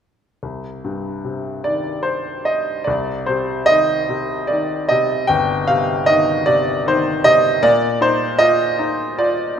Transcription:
0.43 C2
0.84 G2
1.24 C3
1.64 D#3 D5
2.03 C5
2.45 D#5
2.84 C2 D5
3.26 C3 C5
3.66 D#3 D#5
4.09 C3
4.47 D#3 D5
4.89 C3 D#5
5.27 G1 G5
5.67 C3 F5
6.06 D#3 D#5
6.46 C3 D5
6.86 D#3 C5
7.24 C3 D#5
7.63 A#2 D5
8.01 D#4 C5
8.39 F4 D#5
8.79 D#4
9.19 F4 D5

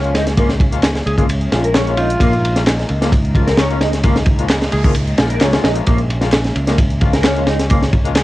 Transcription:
Already playing: C#2 G#3 A#3 C#4
0.04 F3 G#3 A#3 C#4 F4, closed hi-hat
0.14 D#4, snare, ride
0.27 snare, closed hi-hat
0.37 F3 G#3 A#3 C#4 F4, kick, closed hi-hat, ride
0.49 snare, closed hi-hat
0.60 kick, ride
0.72 F3 G#3 A#3 C#4 F4, closed hi-hat
0.83 snare, clap, closed hi-hat, ride
0.95 snare, closed hi-hat
1.06 C#2 G#4, ride
1.18 F3 G#3 A#3 C#4 F4 G#4, kick, closed hi-hat
1.29 closed hi-hat, ride
1.41 closed hi-hat
1.52 A#1 F3 G#3 A#3 C#4 F4, snare, ride
1.64 A#4, closed hi-hat
1.74 C#4, snare, clap, closed hi-hat, ride
1.87 F3 G#3 A#3 C#4 F4, closed hi-hat
1.97 D#4 F4, ride
2.10 closed hi-hat
2.20 A#1 F3 G#3 A#3 C#4 D#4 F4, kick, closed hi-hat, ride
2.33 closed hi-hat
2.45 ride
2.56 F3 G#3 A#3 C#4 F4, snare, closed hi-hat
2.67 snare, clap, closed hi-hat, ride
2.79 snare, closed hi-hat
2.89 C#2, ride
3.01 F3 G#3 A#3 C#4 F4, snare, closed hi-hat
3.12 kick, closed hi-hat, ride
3.25 closed hi-hat
3.35 F3 G#3 A#3 C#4 F4, kick, ride
3.47 A#4, snare, closed hi-hat
3.58 C#4, snare, clap, closed hi-hat, ride
3.70 F3 G#3 A#3 C#4 F4, closed hi-hat
3.81 D#4, snare, ride
3.93 snare, closed hi-hat
4.03 F3 G#3 A#3 C#4 F4, kick, closed hi-hat, ride, noise sweep
4.16 snare, closed hi-hat
4.26 kick, ride
4.39 F3 G#3 A#3 C#4 F4, closed hi-hat
4.49 snare, clap, closed hi-hat, ride
4.62 snare, closed hi-hat
4.72 C#2 G#4, ride
4.84 F3 G#3 A#3 C#4 F4 G#4, kick, closed hi-hat
4.94 closed hi-hat, ride
5.07 closed hi-hat
5.18 A#1 F4, snare, ride
5.30 A#4, closed hi-hat
5.41 C#2 F3 G#3 A#3 C#4 F4, snare, clap, closed hi-hat, ride
5.53 F3 G#3 A#3 C#4 F4, snare, closed hi-hat, ride
5.64 A#1 D#4, snare, ride
5.76 F3 G#3 A#3 C#4 F4, closed hi-hat
5.87 A#1 F3 G#3 A#3 C#4 F4, kick, closed hi-hat, ride
5.98 closed hi-hat
6.10 ride
6.21 F3 G#3 A#3 C#4 F4, snare, closed hi-hat
6.33 snare, clap, closed hi-hat, ride
6.45 snare, closed hi-hat
6.56 C#2, ride
6.67 F3 G#3 A#3 C#4 F4, snare, closed hi-hat
6.78 kick, closed hi-hat, ride
6.91 closed hi-hat
7.01 F3 G#3 A#3 C#4 F4, kick, ride
7.13 A#4, snare, closed hi-hat
7.24 C#4, snare, clap, closed hi-hat, ride
7.36 F3 G#3 A#3 C#4 F4, closed hi-hat
7.47 D#4, snare, ride
7.60 snare, closed hi-hat
7.70 F3 G#3 A#3 C#4 F4, kick, closed hi-hat, ride
7.82 snare, closed hi-hat
7.93 kick, ride
8.05 F3 G#3 A#3 C#4 F4, closed hi-hat
8.15 snare, clap, closed hi-hat, ride

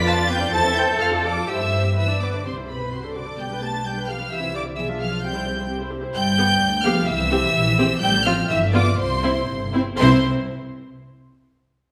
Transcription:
Already playing: F2 F4
0.07 B3 B4 A5 A6
0.18 D4 D5
0.30 B3 B4 G5 G6
0.41 D4 D5
0.53 E2 E4 A4 C5 A5 A6
0.64 C4 E5
0.76 E4 C5 G5 G6
0.88 C4 E5
1.00 F2 F4 A4 F5 F6
1.12 D4 F4
1.24 F4 A4 D5 D6
1.36 D4 F4
1.48 G2 E4 G4 C5 E5 E6
1.60 C4 E5
1.73 E4 C5
1.85 C4 E5
1.97 E3 B3 B4 E5 E6
2.09 D4 D5
2.21 D3 B3 B4 D5 D6
2.33 D4 D5
2.46 C2 C3 C4 G4 C5 C6
2.58 E4 C5
2.69 B2 C4 G4 B4 B5
2.81 E4 C5
2.93 C3 C4 F#4 C5 C6
3.04 D4 A4
3.15 D3 C4 F#4 D5 D6
3.27 D4 A4
3.38 B1 G3 B3 G4 G5 G6
3.50 D4 B4
3.62 A3 B3 G4 A5 A6
3.73 D4 B4
3.85 G3 B3 G4 G5 G6
3.96 D4 B4
4.08 F3 B3 G4 F5 F6
4.19 D4 B4
4.30 C2 E3 E4 G4 E5 E6
4.41 C4 E4
4.54 D3 E4 G4 D5 D6
4.66 C4 E4
4.77 B1 E3 B3 G#4 E5 E6
4.89 D4 F4
5.00 F3 B3 G#4 F5 F6
5.12 D4 F4
5.23 C2 G3 C4 G4 G5 G6
5.35 E4 C5
5.47 C4 G4
5.58 E4 C5
5.69 C4 G4
5.80 E4 C5
5.92 C4 G4
6.03 E4 C5
6.15 G1 G3 G5 G6
6.38 B3 G4
6.62 D2
6.83 F3 B3 G4 F5 F6
7.08 C2 E3 E5 E6
7.32 C4 G4
7.56 A#1
7.78 C4 G4
8.01 A1 G3 G5 G6
8.25 F3 C4 F4 F5 F6
8.48 G1 E3 E5 E6
8.72 D3 B3 F4 D5 D6
8.98 C2 C3 C5 C6
9.23 C4 E4
9.49 G1
9.74 C4 E4
9.98 C2 C4 E4 C5 C6

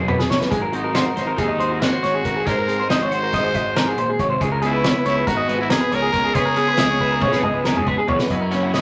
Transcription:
Already playing: B1 F#3 D#4 F#4 A#4
0.08 B2 B4, mid tom
0.19 G#4, snare
0.29 B1 A#2 C#5, snare
0.40 B4, snare
0.50 G#1 G#2 G#4, kick, closed hi-hat
0.62 A#4
0.72 C4 D#4 F#4, closed hi-hat
0.84 A#4
0.95 F#4 C5, snare, closed hi-hat
1.06 A#4
1.15 G#1 D#4 C5, snare, closed hi-hat
1.27 A#4
1.35 D#2 D#3 D#4 G#4, kick, closed hi-hat
1.48 D#5
1.59 G#3 C5, closed hi-hat
1.70 F#4
1.80 C4 F#4 A#4, snare, closed hi-hat
1.93 C5
2.02 G#1 C4 C#5, snare, closed hi-hat
2.14 G#4
2.23 G#1 G#2 A#4, kick, closed hi-hat
2.36 G#4
2.44 G#2 A#4 C5, kick, closed hi-hat
2.58 A#4
2.67 C4 G#4, closed hi-hat
2.80 C5
2.89 G#1 D#4 C5 D#5, snare, closed hi-hat
3.00 F#4 C#5
3.11 F#4 C5, closed hi-hat
3.23 A#4
3.32 G#2 D#3 D#5, kick, closed hi-hat
3.44 C5
3.54 G#1 G#3 D#5, kick, closed hi-hat
3.66 C5
3.75 G#2 A#4, snare, closed hi-hat
3.88 G#4
3.97 A#2 C5, closed hi-hat
4.10 G#4
4.19 G#1 C3 C#5, kick, closed hi-hat
4.30 C5
4.41 C#2 C#3 G#4, kick, closed hi-hat
4.52 A#4
4.62 B3 G#4, closed hi-hat
4.66 E4
4.73 B4
4.84 B3 C#5, snare, closed hi-hat
4.95 B4
5.06 C#2 B3 E4 C#5, closed hi-hat
5.16 B4
5.27 G#1 G#2 F#4 A#4, kick, closed hi-hat
5.37 D#5
5.48 G#3 B4, closed hi-hat
5.58 E4 F#4
5.70 B3 G#4 A#4, snare, closed hi-hat
5.81 B4
5.91 C#2 G#4 A#4 C#5, closed hi-hat
6.02 G#4
6.12 C#2 C#3 A#4, kick, closed hi-hat
6.24 G#4
6.34 C#3 G#4 B4, kick, closed hi-hat
6.45 A#4
6.56 B3 G#4, closed hi-hat
6.68 B4
6.77 C#2 E4 D#5, snare, closed hi-hat
6.90 C#5
7.00 E4 B4, kick
7.11 A#4
7.21 G#2 C#3 C#5, kick, high tom
7.32 B4, snare
7.43 C#2 G#3 D#5, mid tom
7.54 B4
7.65 B3 A#4, snare
7.75 G#4, mid tom
7.87 G#4 B4, kick
7.98 G#4 B4
8.08 E2 C#3 C#5, floor tom
8.19 B4, snare
8.30 F#2 F#3 B3 E4 D#5, kick, closed hi-hat
8.41 C#4 A#4
8.52 C#3 E3 A#3 C#4 C#5, snare, closed hi-hat
8.63 F#5
8.73 C#3 E3 A#3 C#4 D#5, snare, closed hi-hat

